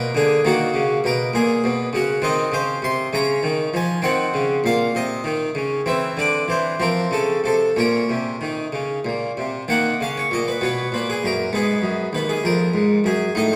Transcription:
harpsichord
Already playing: A#3 A#4
0.15 D3 G#4
0.45 D#3 A#3 F#4
0.74 C#3
1.04 B2 A#4
1.34 A#2 G#4
1.64 B2
1.93 C#3 F#4
2.22 D#3 C4 D#5
2.52 C#3 C5
2.82 C3 C6
3.13 C#3 C#4 A#5
3.43 D#3
3.74 F3 G#5
4.02 D#3 C4 F#5
4.34 C#3
4.64 A#2 F5
4.95 C3 D#5
5.24 D#3
5.55 C#3
5.86 E3 C4 E5
6.17 D3 D5
6.48 E3 C5
6.80 F3 C4 A#4
7.11 C#3 A4
7.44 C3 A4
7.76 A#2 C#4 A#4
8.10 C3
8.41 D#3
8.73 C#3
9.05 A#2
9.37 C3
9.68 D#3 A#3 F#5
10.01 C#3 F5
10.17 C#5
10.31 A#2 D#5
10.48 B4
10.61 B2 B3 C#5
10.92 A#2 B4
11.10 G#4
11.24 F#2 A#4
11.53 G#2 B3 G#4
11.82 F#2
12.13 D#2 B4
12.29 G#4
12.44 F2 A#4
12.74 G#2
13.04 F#2 G#4
13.35 A2 D#4 D#5

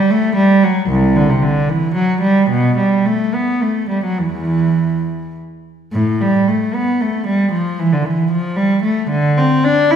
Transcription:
cello
Already playing: G3
0.10 A3
0.36 G3
0.63 F#3
0.90 C2
1.16 D3
1.30 C3
1.42 D3
1.69 E3
1.95 F#3
2.22 G3
2.50 B2
2.77 G3
3.06 A3
3.34 B3
3.61 A3
3.89 G3
4.04 F#3
4.18 E2 E3
5.93 A2
6.21 G3
6.48 A3
6.74 B3
7.01 A3
7.27 G3
7.52 F3
7.79 E3
7.92 D3
8.04 E3
8.32 F3
8.56 G3
8.83 A3
9.10 D3
9.37 C4
9.64 D4
9.91 E4

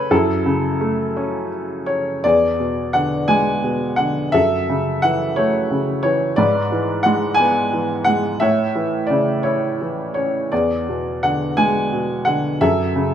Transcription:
grand piano
Already playing: C#3 A3 C#4 A4 B4 C#5
0.11 F#2 E4 A4
0.46 C#3
0.81 A3
1.17 C#4
1.86 C#5
2.24 E2 G#4 D5
2.60 B2
2.93 D3 F#5
3.28 G#3 G#5
3.64 B2
3.96 D3 F#5
4.32 F#2 A4 E5
4.69 C#3
5.02 E3 F#5
5.36 A3 C#5
5.71 C#3
6.03 E3 C#5
6.36 G#2 B4 D5
6.72 E3
7.03 G#3 F#5
7.34 G#5
7.40 B3
7.73 E3
8.05 G#3 F#5
8.40 A2 C#5 E5
8.75 E3
9.07 C#3 D5
9.43 E4 C#5
9.81 E3
10.14 C#4 C#5
10.52 E2 G#4 D5
10.89 B2
11.23 D3 F#5
11.57 G#3 G#5
11.93 B2
12.25 D3 F#5
12.61 F#2 A4 E5
12.96 C#3

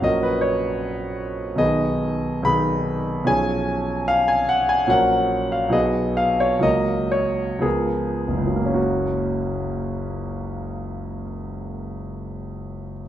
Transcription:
grand piano
0.02 A#1 F#3 C#4 A#4 D#5
0.23 B4
0.41 C#5
1.56 B1 D#3 B3 G#4 D#5
2.43 B1 D#3 B3 G#4 B5
3.24 B1 F3 C#4 G#4 G#5
4.08 F5
4.28 G#5
4.49 F#5
4.69 G#5
4.87 A#1 F#3 C#4 A#4 F#5
5.52 F5
5.69 B1 F#3 B3 G#4 D#5
6.17 F5
6.40 C#5
6.59 C#2 F#3 A#3 A#4 D#5
7.12 C#5
7.59 C#2 F3 B3 G#4 A#4
8.28 F#1
8.38 C#2
8.47 F#3
8.56 A#3
8.66 C#4
8.74 F#4

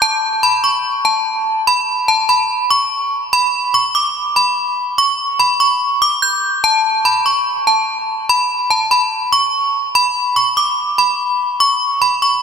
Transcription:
synth bell
0.02 A5
0.43 B5
0.64 C#6
1.05 A5
1.67 B5
2.08 A5
2.29 B5
2.70 C#6
3.33 B5
3.74 C#6
3.95 D6
4.36 B5
4.98 C#6
5.39 B5
5.60 C#6
6.02 D6
6.22 G6
6.64 A5
7.05 B5
7.26 C#6
7.67 A5
8.29 B5
8.70 A5
8.91 B5
9.32 C#6
9.95 B5
10.36 C#6
10.57 D6
10.98 B5
11.60 C#6
12.02 B5
12.22 C#6

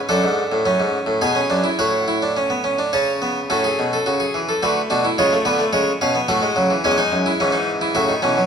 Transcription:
harpsichord
0.09 F#2 D4 A4 F#5
0.24 G#2
0.52 A2
0.65 F#2 C#4
0.80 G#2
1.06 A2
1.21 B2 B3 G#4 G#5
1.35 C#4
1.50 F#2 D4
1.64 E4
1.79 A2 F#4 C#5 F#5
2.08 E4
2.22 D4
2.37 C#4
2.50 B3
2.64 C#4
2.79 D4
2.93 C#3 C#4 C#5 A5
3.22 B3
3.50 A2 C#4 F#4 A4
3.64 G#4
3.79 B2
3.93 A4
4.06 C#3 F#4
4.20 G#4
4.34 E3
4.49 A4
4.63 D3 A3 F#4 B4
4.90 B2 D4 F#4
5.05 E4
5.18 C#3 G#3 F4 C#5
5.33 A3
5.45 D3 B3 B4
5.59 A3
5.73 C#3 G#3 C#5
6.01 B2 C#4 F5
6.15 B3
6.28 A2 A3 F#4 F#5
6.42 G#3
6.56 C#3 F#3
6.70 E3
6.84 E2 G#3 C#4 G#5
6.91 F#5
6.98 D#4 G#5
7.12 F#2
7.26 E4
7.40 G#2 E3 C#4
7.52 D#4
7.81 E4
7.95 A2 C#3 F#4 E5
8.09 D#3
8.22 B2 E3 C#4
8.37 F#3

